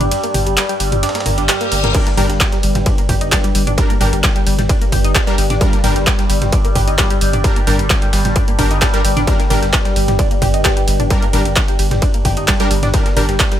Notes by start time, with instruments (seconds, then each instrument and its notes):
Already playing: synth drone G2 G3, ambient pad G4 D5 G5
0.00 sub bass G1, synth arpeggio sound D4, closed hi-hat, mid tom, ride
0.11 synth arpeggio sound G3, closed hi-hat, ride
0.23 synth arpeggio sound A#3, closed hi-hat, ride
0.34 sub bass G1, synth arpeggio sound G4, mid tom, open hi-hat, ride
0.46 sub bass G1, synth arpeggio sound G3, closed hi-hat, ride
0.57 synth arpeggio sound G3, snare, clap, closed hi-hat, ride
0.69 synth arpeggio sound G3, closed hi-hat, ride
0.80 sub bass G1, synth arpeggio sound G3, open hi-hat, ride
0.92 sub bass G1, synth arpeggio sound G3, closed hi-hat, mid tom, ride
1.03 synth arpeggio sound D4, snare, closed hi-hat, ride, reverse cymbal
1.09 snare, ride
1.15 synth arpeggio sound A#3, snare, closed hi-hat, ride
1.20 snare, ride
1.26 sub bass G1, synth arpeggio sound A#3, mid tom, open hi-hat, ride
1.38 sub bass G1, synth arpeggio sound D4, closed hi-hat, ride
1.49 synth arpeggio sound G3, snare, clap, closed hi-hat, ride
1.61 synth arpeggio sound A#3, closed hi-hat, ride
1.72 sub bass G1, synth arpeggio sound A#3, open hi-hat, ride
1.84 sub bass G1, synth arpeggio sound A#3, snare, closed hi-hat, mid tom, ride
1.95 synth drone G2 G3, supersaw synth G3 D4 A#4, synth arpeggio sound G3, kick, closed hi-hat, crash, ride
2.07 synth arpeggio sound A#3, snare, closed hi-hat, ride
2.17 sub bass G1, supersaw synth G3 D4 A#4, synth arpeggio sound G4, mid tom, open hi-hat, ride
2.30 sub bass G1, synth arpeggio sound G3, snare, closed hi-hat, ride
2.40 kick, snare, clap, closed hi-hat, ride
2.52 synth arpeggio sound G3, snare, closed hi-hat, ride
2.63 sub bass G1, synth arpeggio sound G3, open hi-hat, ride
2.75 sub bass G1, synth arpeggio sound G3, snare, closed hi-hat, mid tom, ride
2.86 synth arpeggio sound D4, kick, closed hi-hat, ride
2.98 synth arpeggio sound A#3, closed hi-hat, ride
3.09 sub bass G1, synth arpeggio sound G4, kick, mid tom, open hi-hat, ride
3.21 sub bass G1, synth arpeggio sound D#4, closed hi-hat, ride
3.32 synth arpeggio sound G3, kick, snare, clap, closed hi-hat, ride
3.44 synth arpeggio sound G3, closed hi-hat, ride
3.55 sub bass G1, synth arpeggio sound G3, open hi-hat, ride
3.67 sub bass G1, synth arpeggio sound D4, closed hi-hat, mid tom, ride
3.78 supersaw synth G3 D4 A#4, synth arpeggio sound G3, kick, closed hi-hat, ride
3.90 synth arpeggio sound A#3, closed hi-hat, ride
4.01 sub bass G1, supersaw synth G3 D4 A#4, synth arpeggio sound G4, mid tom, open hi-hat, ride
4.13 sub bass G1, synth arpeggio sound G3, closed hi-hat, ride
4.24 kick, snare, clap, closed hi-hat, ride
4.36 synth arpeggio sound G3, closed hi-hat, ride
4.46 sub bass G1, synth arpeggio sound G3, open hi-hat, ride
4.59 sub bass G1, synth arpeggio sound G3, snare, closed hi-hat, mid tom, ride
4.69 synth arpeggio sound D4, kick, closed hi-hat, ride
4.82 synth arpeggio sound A#3, closed hi-hat, ride
4.92 sub bass G1, synth arpeggio sound G4, kick, mid tom, open hi-hat, ride
5.04 sub bass G1, synth arpeggio sound D#4, closed hi-hat, ride
5.15 synth arpeggio sound G3, kick, snare, clap, closed hi-hat, ride
5.27 supersaw synth G3 D4 A#4, synth arpeggio sound G3, snare, closed hi-hat, ride
5.38 sub bass G1, synth arpeggio sound G3, open hi-hat, ride
5.50 sub bass G1, synth arpeggio sound D4, snare, closed hi-hat, mid tom, ride
5.61 synth arpeggio sound G3, supersaw synth G3 D4 A#4, kick, closed hi-hat, ride
5.73 synth arpeggio sound A#3, snare, closed hi-hat, ride
5.84 sub bass G1, supersaw synth G3 D4 A#4, synth arpeggio sound G4, mid tom, open hi-hat, ride
5.96 sub bass G1, synth arpeggio sound G3, snare, closed hi-hat, ride
6.07 synth arpeggio sound G3, kick, snare, clap, closed hi-hat, ride
6.19 synth arpeggio sound G3, snare, closed hi-hat, ride
6.30 sub bass G1, synth arpeggio sound G3, open hi-hat, ride
6.42 sub bass G1, synth arpeggio sound G3, snare, closed hi-hat, mid tom, ride
6.53 synth arpeggio sound D4, kick, closed hi-hat, ride
6.65 synth arpeggio sound A#3, closed hi-hat, ride
6.75 sub bass G1, synth arpeggio sound G4, kick, mid tom, open hi-hat, ride
6.88 sub bass G1, synth arpeggio sound D#4, closed hi-hat, ride
6.98 synth arpeggio sound G3, kick, snare, clap, closed hi-hat, ride
7.10 synth arpeggio sound G3, closed hi-hat, ride
7.21 sub bass G1, synth arpeggio sound G3, open hi-hat, ride
7.33 sub bass G1, synth arpeggio sound D4, closed hi-hat, mid tom, ride
7.44 supersaw synth G3 D4 A#4, synth arpeggio sound G3, kick, closed hi-hat, ride
7.56 synth arpeggio sound A#3, closed hi-hat, ride
7.67 sub bass G1, supersaw synth G3 D4 A#4, synth arpeggio sound G4, mid tom, open hi-hat, ride
7.79 sub bass G1, synth arpeggio sound G3, closed hi-hat, ride
7.90 synth arpeggio sound G3, kick, snare, clap, closed hi-hat, ride
8.02 synth arpeggio sound G3, closed hi-hat, ride
8.13 sub bass G1, synth arpeggio sound G3, snare, open hi-hat, ride
8.25 sub bass G1, synth arpeggio sound G3, snare, closed hi-hat, mid tom, ride
8.36 synth arpeggio sound D4, kick, closed hi-hat, ride
8.48 synth arpeggio sound A#3, closed hi-hat, ride
8.59 sub bass G1, supersaw synth G3 D4 A#4, synth arpeggio sound G4, kick, mid tom, open hi-hat, ride
8.71 sub bass G1, synth arpeggio sound D#4, closed hi-hat, ride
8.82 synth arpeggio sound G3, kick, snare, clap, closed hi-hat, ride
8.94 supersaw synth G3 D4 A#4, synth arpeggio sound G3, closed hi-hat, ride
9.04 sub bass G1, synth arpeggio sound G3, open hi-hat, ride
9.17 sub bass G1, synth arpeggio sound D4, snare, closed hi-hat, mid tom, ride
9.27 supersaw synth G3 D4 A#4, synth arpeggio sound G3, kick, closed hi-hat, ride
9.40 synth arpeggio sound A#3, snare, closed hi-hat, ride
9.50 sub bass G1, supersaw synth G3 D4 A#4, synth arpeggio sound G4, mid tom, open hi-hat, ride
9.62 sub bass G1, synth arpeggio sound G3, snare, closed hi-hat, ride
9.73 synth arpeggio sound G3, kick, snare, clap, closed hi-hat, ride
9.85 synth arpeggio sound G3, snare, closed hi-hat, ride
9.96 sub bass G1, synth arpeggio sound G3, open hi-hat, ride
10.08 sub bass G1, synth arpeggio sound G3, snare, closed hi-hat, mid tom, ride
10.19 synth arpeggio sound D4, kick, closed hi-hat, ride
10.31 synth arpeggio sound A#3, closed hi-hat, ride
10.42 sub bass G1, synth arpeggio sound G4, kick, mid tom, open hi-hat, ride
10.54 sub bass G1, synth arpeggio sound D#4, closed hi-hat, ride
10.65 synth arpeggio sound G3, kick, snare, clap, closed hi-hat, ride
10.77 synth arpeggio sound G3, closed hi-hat, ride
10.88 sub bass G1, synth arpeggio sound G3, open hi-hat, ride
11.00 sub bass G1, synth arpeggio sound D4, closed hi-hat, mid tom, ride
11.10 synth arpeggio sound G3, supersaw synth G3 D4 A#4, kick, closed hi-hat, ride
11.22 synth arpeggio sound A#3, closed hi-hat, ride
11.33 sub bass G1, supersaw synth G3 D4 A#4, synth arpeggio sound G4, mid tom, open hi-hat, ride
11.45 sub bass G1, synth arpeggio sound G3, closed hi-hat, ride
11.56 synth arpeggio sound G3, kick, snare, clap, closed hi-hat, ride
11.68 synth arpeggio sound G3, closed hi-hat, ride
11.79 sub bass G1, synth arpeggio sound G3, open hi-hat, ride
11.91 sub bass G1, synth arpeggio sound G3, snare, closed hi-hat, mid tom, ride
12.02 synth arpeggio sound D4, kick, closed hi-hat, ride
12.14 synth arpeggio sound A#3, closed hi-hat, ride
12.25 sub bass G1, synth arpeggio sound G4, kick, mid tom, open hi-hat, ride
12.37 sub bass G1, synth arpeggio sound D#4, closed hi-hat, ride
12.48 synth arpeggio sound G3, kick, snare, clap, closed hi-hat, ride
12.60 synth arpeggio sound G3, supersaw synth G3 D4 A#4, snare, closed hi-hat, ride
12.71 sub bass G1, synth arpeggio sound G3, open hi-hat, ride
12.83 sub bass G1, synth arpeggio sound D4, snare, closed hi-hat, mid tom, ride
12.94 supersaw synth G3 D4 A#4, synth arpeggio sound G3, kick, closed hi-hat, ride
13.06 synth arpeggio sound A#3, snare, closed hi-hat, ride
13.16 sub bass G1, supersaw synth G3 D4 A#4, synth arpeggio sound G4, mid tom, open hi-hat, ride
13.29 sub bass G1, synth arpeggio sound G3, snare, closed hi-hat, ride
13.40 synth arpeggio sound G3, kick, snare, clap, closed hi-hat, ride
13.52 synth arpeggio sound G3, snare, closed hi-hat, ride